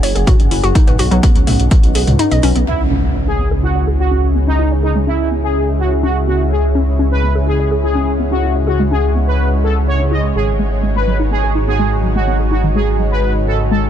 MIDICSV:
0, 0, Header, 1, 9, 480
1, 0, Start_track
1, 0, Key_signature, 4, "minor"
1, 0, Tempo, 480000
1, 752, Time_signature, 4, 2, 24, 8
1, 13899, End_track
2, 0, Start_track
2, 0, Title_t, "Ambient pad"
2, 0, Program_c, 0, 92
2, 0, Note_on_c, 0, 61, 81
2, 0, Note_on_c, 0, 68, 78
2, 0, Note_on_c, 0, 78, 80
2, 0, Note_on_c, 0, 80, 80
2, 789, Note_on_c, 0, 71, 76
2, 1079, Note_on_c, 0, 75, 81
2, 1385, Note_off_c, 0, 68, 0
2, 1479, Note_off_c, 0, 80, 0
2, 2673, Note_off_c, 0, 75, 0
2, 2674, Note_off_c, 0, 78, 0
2, 2897, Note_on_c, 0, 68, 66
2, 2954, Note_on_c, 0, 76, 81
2, 3048, Note_on_c, 0, 80, 74
2, 3699, Note_off_c, 0, 71, 0
2, 7239, Note_on_c, 0, 78, 77
2, 7385, Note_off_c, 0, 80, 0
2, 10353, Note_off_c, 0, 76, 0
2, 10395, Note_on_c, 0, 66, 74
2, 10730, Note_on_c, 0, 80, 78
2, 10773, Note_on_c, 0, 75, 84
2, 10960, Note_off_c, 0, 78, 0
2, 11495, Note_off_c, 0, 68, 0
2, 13899, Note_off_c, 0, 61, 0
2, 13899, Note_off_c, 0, 66, 0
2, 13899, Note_off_c, 0, 75, 0
2, 13899, Note_off_c, 0, 80, 0
2, 13899, End_track
3, 0, Start_track
3, 0, Title_t, "Analog polysynth"
3, 0, Program_c, 1, 90
3, 2671, Note_on_c, 1, 64, 94
3, 2816, Note_off_c, 1, 64, 0
3, 3274, Note_on_c, 1, 68, 92
3, 3487, Note_off_c, 1, 68, 0
3, 3631, Note_on_c, 1, 66, 87
3, 3845, Note_off_c, 1, 66, 0
3, 3993, Note_on_c, 1, 66, 90
3, 4277, Note_off_c, 1, 66, 0
3, 4472, Note_on_c, 1, 63, 96
3, 4686, Note_off_c, 1, 63, 0
3, 4830, Note_on_c, 1, 63, 88
3, 4975, Note_off_c, 1, 63, 0
3, 5071, Note_on_c, 1, 64, 90
3, 5285, Note_off_c, 1, 64, 0
3, 5433, Note_on_c, 1, 68, 91
3, 5646, Note_off_c, 1, 68, 0
3, 5791, Note_on_c, 1, 66, 90
3, 5936, Note_off_c, 1, 66, 0
3, 6032, Note_on_c, 1, 66, 87
3, 6176, Note_off_c, 1, 66, 0
3, 6270, Note_on_c, 1, 66, 87
3, 6416, Note_off_c, 1, 66, 0
3, 6512, Note_on_c, 1, 68, 95
3, 6656, Note_off_c, 1, 68, 0
3, 7113, Note_on_c, 1, 71, 92
3, 7327, Note_off_c, 1, 71, 0
3, 7473, Note_on_c, 1, 68, 92
3, 7686, Note_off_c, 1, 68, 0
3, 7834, Note_on_c, 1, 68, 90
3, 8118, Note_off_c, 1, 68, 0
3, 8313, Note_on_c, 1, 66, 92
3, 8527, Note_off_c, 1, 66, 0
3, 8672, Note_on_c, 1, 66, 87
3, 8816, Note_off_c, 1, 66, 0
3, 8910, Note_on_c, 1, 68, 93
3, 9124, Note_off_c, 1, 68, 0
3, 9272, Note_on_c, 1, 71, 92
3, 9486, Note_off_c, 1, 71, 0
3, 9630, Note_on_c, 1, 69, 88
3, 9776, Note_off_c, 1, 69, 0
3, 9872, Note_on_c, 1, 73, 85
3, 10016, Note_off_c, 1, 73, 0
3, 10113, Note_on_c, 1, 75, 83
3, 10257, Note_off_c, 1, 75, 0
3, 10354, Note_on_c, 1, 68, 96
3, 10497, Note_off_c, 1, 68, 0
3, 10957, Note_on_c, 1, 71, 92
3, 11168, Note_off_c, 1, 71, 0
3, 11314, Note_on_c, 1, 68, 92
3, 11527, Note_off_c, 1, 68, 0
3, 11677, Note_on_c, 1, 68, 93
3, 11959, Note_off_c, 1, 68, 0
3, 12154, Note_on_c, 1, 66, 93
3, 12367, Note_off_c, 1, 66, 0
3, 12512, Note_on_c, 1, 66, 86
3, 12656, Note_off_c, 1, 66, 0
3, 12751, Note_on_c, 1, 68, 91
3, 12965, Note_off_c, 1, 68, 0
3, 13113, Note_on_c, 1, 71, 93
3, 13327, Note_off_c, 1, 71, 0
3, 13470, Note_on_c, 1, 69, 88
3, 13615, Note_off_c, 1, 69, 0
3, 13710, Note_on_c, 1, 69, 86
3, 13855, Note_off_c, 1, 69, 0
3, 13899, End_track
4, 0, Start_track
4, 0, Title_t, "Analog synth pad"
4, 0, Program_c, 2, 89
4, 2670, Note_on_c, 2, 56, 77
4, 2670, Note_on_c, 2, 73, 86
4, 2671, Note_on_c, 2, 61, 69
4, 2671, Note_on_c, 2, 64, 70
4, 10312, Note_off_c, 2, 61, 0
4, 10312, Note_off_c, 2, 64, 0
4, 10350, Note_on_c, 2, 63, 73
4, 10350, Note_on_c, 2, 66, 70
4, 13899, Note_off_c, 2, 56, 0
4, 13899, Note_off_c, 2, 63, 0
4, 13899, Note_off_c, 2, 66, 0
4, 13899, Note_off_c, 2, 73, 0
4, 13899, End_track
5, 0, Start_track
5, 0, Title_t, "Synth arpeggio sound"
5, 0, Program_c, 3, 84
5, 31, Note_on_c, 3, 73, 97
5, 82, Note_off_c, 3, 73, 0
5, 154, Note_on_c, 3, 68, 75
5, 235, Note_off_c, 3, 68, 0
5, 272, Note_on_c, 3, 66, 96
5, 323, Note_off_c, 3, 66, 0
5, 512, Note_on_c, 3, 64, 76
5, 563, Note_off_c, 3, 64, 0
5, 635, Note_on_c, 3, 66, 98
5, 683, Note_off_c, 3, 66, 0
5, 752, Note_on_c, 3, 63, 78
5, 836, Note_off_c, 3, 63, 0
5, 874, Note_on_c, 3, 71, 78
5, 956, Note_off_c, 3, 71, 0
5, 991, Note_on_c, 3, 66, 101
5, 1042, Note_off_c, 3, 66, 0
5, 1113, Note_on_c, 3, 54, 109
5, 1195, Note_off_c, 3, 54, 0
5, 1231, Note_on_c, 3, 59, 100
5, 1282, Note_off_c, 3, 59, 0
5, 1471, Note_on_c, 3, 57, 77
5, 1522, Note_off_c, 3, 57, 0
5, 1951, Note_on_c, 3, 68, 76
5, 2036, Note_off_c, 3, 68, 0
5, 2191, Note_on_c, 3, 63, 84
5, 2308, Note_off_c, 3, 63, 0
5, 2314, Note_on_c, 3, 75, 78
5, 2396, Note_off_c, 3, 75, 0
5, 2431, Note_on_c, 3, 61, 101
5, 2516, Note_off_c, 3, 61, 0
5, 2554, Note_on_c, 3, 59, 76
5, 2603, Note_off_c, 3, 59, 0
5, 2911, Note_on_c, 3, 61, 98
5, 2962, Note_off_c, 3, 61, 0
5, 3150, Note_on_c, 3, 61, 96
5, 3202, Note_off_c, 3, 61, 0
5, 3273, Note_on_c, 3, 61, 72
5, 3386, Note_off_c, 3, 61, 0
5, 3391, Note_on_c, 3, 59, 74
5, 3442, Note_off_c, 3, 59, 0
5, 3513, Note_on_c, 3, 68, 97
5, 3595, Note_off_c, 3, 68, 0
5, 3631, Note_on_c, 3, 64, 79
5, 3716, Note_off_c, 3, 64, 0
5, 3754, Note_on_c, 3, 73, 71
5, 3835, Note_off_c, 3, 73, 0
5, 3872, Note_on_c, 3, 68, 96
5, 3923, Note_off_c, 3, 68, 0
5, 3994, Note_on_c, 3, 64, 73
5, 4075, Note_off_c, 3, 64, 0
5, 4110, Note_on_c, 3, 61, 95
5, 4162, Note_off_c, 3, 61, 0
5, 4350, Note_on_c, 3, 59, 74
5, 4402, Note_off_c, 3, 59, 0
5, 4473, Note_on_c, 3, 61, 96
5, 4522, Note_off_c, 3, 61, 0
5, 4591, Note_on_c, 3, 64, 82
5, 4676, Note_off_c, 3, 64, 0
5, 4714, Note_on_c, 3, 73, 74
5, 4795, Note_off_c, 3, 73, 0
5, 4830, Note_on_c, 3, 68, 93
5, 4882, Note_off_c, 3, 68, 0
5, 4954, Note_on_c, 3, 56, 100
5, 5035, Note_off_c, 3, 56, 0
5, 5071, Note_on_c, 3, 61, 96
5, 5122, Note_off_c, 3, 61, 0
5, 5311, Note_on_c, 3, 59, 70
5, 5362, Note_off_c, 3, 59, 0
5, 6031, Note_on_c, 3, 61, 94
5, 6082, Note_off_c, 3, 61, 0
5, 6271, Note_on_c, 3, 59, 76
5, 6323, Note_off_c, 3, 59, 0
5, 6750, Note_on_c, 3, 61, 98
5, 6802, Note_off_c, 3, 61, 0
5, 6991, Note_on_c, 3, 61, 96
5, 7042, Note_off_c, 3, 61, 0
5, 7113, Note_on_c, 3, 61, 73
5, 7226, Note_off_c, 3, 61, 0
5, 7231, Note_on_c, 3, 59, 74
5, 7282, Note_off_c, 3, 59, 0
5, 7354, Note_on_c, 3, 68, 95
5, 7435, Note_off_c, 3, 68, 0
5, 7471, Note_on_c, 3, 64, 80
5, 7556, Note_off_c, 3, 64, 0
5, 7594, Note_on_c, 3, 73, 72
5, 7675, Note_off_c, 3, 73, 0
5, 7712, Note_on_c, 3, 68, 97
5, 7763, Note_off_c, 3, 68, 0
5, 7834, Note_on_c, 3, 64, 74
5, 7915, Note_off_c, 3, 64, 0
5, 7951, Note_on_c, 3, 61, 92
5, 8002, Note_off_c, 3, 61, 0
5, 8192, Note_on_c, 3, 59, 72
5, 8243, Note_off_c, 3, 59, 0
5, 8313, Note_on_c, 3, 61, 90
5, 8363, Note_off_c, 3, 61, 0
5, 8431, Note_on_c, 3, 64, 76
5, 8516, Note_off_c, 3, 64, 0
5, 8554, Note_on_c, 3, 73, 72
5, 8635, Note_off_c, 3, 73, 0
5, 8671, Note_on_c, 3, 68, 96
5, 8722, Note_off_c, 3, 68, 0
5, 8793, Note_on_c, 3, 56, 101
5, 8875, Note_off_c, 3, 56, 0
5, 8911, Note_on_c, 3, 61, 96
5, 8962, Note_off_c, 3, 61, 0
5, 9152, Note_on_c, 3, 59, 73
5, 9203, Note_off_c, 3, 59, 0
5, 9872, Note_on_c, 3, 73, 79
5, 9957, Note_off_c, 3, 73, 0
5, 9995, Note_on_c, 3, 61, 93
5, 10076, Note_off_c, 3, 61, 0
5, 10112, Note_on_c, 3, 64, 99
5, 10163, Note_off_c, 3, 64, 0
5, 10235, Note_on_c, 3, 68, 73
5, 10347, Note_off_c, 3, 68, 0
5, 10592, Note_on_c, 3, 56, 100
5, 10643, Note_off_c, 3, 56, 0
5, 10831, Note_on_c, 3, 56, 95
5, 10882, Note_off_c, 3, 56, 0
5, 10954, Note_on_c, 3, 56, 72
5, 11066, Note_off_c, 3, 56, 0
5, 11072, Note_on_c, 3, 54, 74
5, 11123, Note_off_c, 3, 54, 0
5, 11194, Note_on_c, 3, 63, 95
5, 11275, Note_off_c, 3, 63, 0
5, 11312, Note_on_c, 3, 59, 81
5, 11396, Note_off_c, 3, 59, 0
5, 11435, Note_on_c, 3, 68, 73
5, 11516, Note_off_c, 3, 68, 0
5, 11552, Note_on_c, 3, 63, 95
5, 11603, Note_off_c, 3, 63, 0
5, 11674, Note_on_c, 3, 59, 72
5, 11756, Note_off_c, 3, 59, 0
5, 11792, Note_on_c, 3, 56, 96
5, 11843, Note_off_c, 3, 56, 0
5, 12032, Note_on_c, 3, 54, 73
5, 12083, Note_off_c, 3, 54, 0
5, 12154, Note_on_c, 3, 56, 99
5, 12203, Note_off_c, 3, 56, 0
5, 12272, Note_on_c, 3, 59, 78
5, 12357, Note_off_c, 3, 59, 0
5, 12395, Note_on_c, 3, 68, 76
5, 12476, Note_off_c, 3, 68, 0
5, 12512, Note_on_c, 3, 63, 100
5, 12563, Note_off_c, 3, 63, 0
5, 12635, Note_on_c, 3, 51, 100
5, 12716, Note_off_c, 3, 51, 0
5, 12752, Note_on_c, 3, 56, 97
5, 12803, Note_off_c, 3, 56, 0
5, 12992, Note_on_c, 3, 54, 76
5, 13043, Note_off_c, 3, 54, 0
5, 13713, Note_on_c, 3, 56, 99
5, 13763, Note_off_c, 3, 56, 0
5, 13899, End_track
6, 0, Start_track
6, 0, Title_t, "Synth drone"
6, 0, Program_c, 4, 95
6, 2672, Note_on_c, 4, 49, 73
6, 2672, Note_on_c, 4, 56, 73
6, 13899, Note_off_c, 4, 49, 0
6, 13899, Note_off_c, 4, 56, 0
6, 13899, End_track
7, 0, Start_track
7, 0, Title_t, "Detuned saw bass"
7, 0, Program_c, 5, 39
7, 31, Note_on_c, 5, 30, 94
7, 124, Note_off_c, 5, 30, 0
7, 155, Note_on_c, 5, 30, 91
7, 243, Note_off_c, 5, 30, 0
7, 395, Note_on_c, 5, 30, 83
7, 483, Note_off_c, 5, 30, 0
7, 512, Note_on_c, 5, 30, 95
7, 604, Note_off_c, 5, 30, 0
7, 634, Note_on_c, 5, 30, 89
7, 722, Note_off_c, 5, 30, 0
7, 873, Note_on_c, 5, 35, 86
7, 962, Note_off_c, 5, 35, 0
7, 992, Note_on_c, 5, 35, 101
7, 1084, Note_off_c, 5, 35, 0
7, 1114, Note_on_c, 5, 35, 93
7, 1203, Note_off_c, 5, 35, 0
7, 1353, Note_on_c, 5, 37, 89
7, 1442, Note_off_c, 5, 37, 0
7, 1472, Note_on_c, 5, 35, 99
7, 1564, Note_off_c, 5, 35, 0
7, 1595, Note_on_c, 5, 35, 86
7, 1683, Note_off_c, 5, 35, 0
7, 1834, Note_on_c, 5, 35, 89
7, 1922, Note_off_c, 5, 35, 0
7, 1951, Note_on_c, 5, 35, 97
7, 2044, Note_off_c, 5, 35, 0
7, 2075, Note_on_c, 5, 37, 88
7, 2163, Note_off_c, 5, 37, 0
7, 2314, Note_on_c, 5, 35, 84
7, 2402, Note_off_c, 5, 35, 0
7, 2431, Note_on_c, 5, 35, 99
7, 2524, Note_off_c, 5, 35, 0
7, 2555, Note_on_c, 5, 35, 89
7, 2643, Note_off_c, 5, 35, 0
7, 2672, Note_on_c, 5, 37, 82
7, 10329, Note_off_c, 5, 37, 0
7, 10352, Note_on_c, 5, 32, 80
7, 13899, Note_off_c, 5, 32, 0
7, 13899, End_track
8, 0, Start_track
8, 0, Title_t, "Impact"
8, 0, Program_c, 6, 103
8, 2673, Note_on_c, 6, 60, 66
8, 4592, Note_off_c, 6, 60, 0
8, 13899, End_track
9, 0, Start_track
9, 0, Title_t, "Drums"
9, 32, Note_on_c, 9, 46, 100
9, 132, Note_off_c, 9, 46, 0
9, 155, Note_on_c, 9, 42, 45
9, 255, Note_off_c, 9, 42, 0
9, 272, Note_on_c, 9, 36, 112
9, 273, Note_on_c, 9, 42, 71
9, 273, Note_on_c, 9, 45, 85
9, 372, Note_off_c, 9, 36, 0
9, 373, Note_off_c, 9, 42, 0
9, 373, Note_off_c, 9, 45, 0
9, 396, Note_on_c, 9, 42, 45
9, 496, Note_off_c, 9, 42, 0
9, 513, Note_on_c, 9, 46, 88
9, 613, Note_off_c, 9, 46, 0
9, 636, Note_on_c, 9, 42, 45
9, 736, Note_off_c, 9, 42, 0
9, 752, Note_on_c, 9, 36, 112
9, 753, Note_on_c, 9, 42, 82
9, 852, Note_off_c, 9, 36, 0
9, 853, Note_off_c, 9, 42, 0
9, 875, Note_on_c, 9, 42, 44
9, 875, Note_on_c, 9, 45, 92
9, 975, Note_off_c, 9, 42, 0
9, 975, Note_off_c, 9, 45, 0
9, 992, Note_on_c, 9, 46, 99
9, 1092, Note_off_c, 9, 46, 0
9, 1115, Note_on_c, 9, 42, 48
9, 1215, Note_off_c, 9, 42, 0
9, 1232, Note_on_c, 9, 36, 116
9, 1232, Note_on_c, 9, 42, 81
9, 1332, Note_off_c, 9, 36, 0
9, 1332, Note_off_c, 9, 42, 0
9, 1355, Note_on_c, 9, 42, 46
9, 1455, Note_off_c, 9, 42, 0
9, 1473, Note_on_c, 9, 45, 92
9, 1473, Note_on_c, 9, 46, 87
9, 1573, Note_off_c, 9, 45, 0
9, 1573, Note_off_c, 9, 46, 0
9, 1595, Note_on_c, 9, 42, 49
9, 1695, Note_off_c, 9, 42, 0
9, 1712, Note_on_c, 9, 36, 116
9, 1712, Note_on_c, 9, 42, 81
9, 1812, Note_off_c, 9, 36, 0
9, 1812, Note_off_c, 9, 42, 0
9, 1834, Note_on_c, 9, 42, 46
9, 1934, Note_off_c, 9, 42, 0
9, 1951, Note_on_c, 9, 46, 100
9, 2051, Note_off_c, 9, 46, 0
9, 2074, Note_on_c, 9, 42, 46
9, 2074, Note_on_c, 9, 45, 93
9, 2174, Note_off_c, 9, 42, 0
9, 2174, Note_off_c, 9, 45, 0
9, 2192, Note_on_c, 9, 42, 75
9, 2292, Note_off_c, 9, 42, 0
9, 2315, Note_on_c, 9, 42, 46
9, 2415, Note_off_c, 9, 42, 0
9, 2432, Note_on_c, 9, 46, 85
9, 2532, Note_off_c, 9, 46, 0
9, 2555, Note_on_c, 9, 42, 46
9, 2655, Note_off_c, 9, 42, 0
9, 13899, End_track
0, 0, End_of_file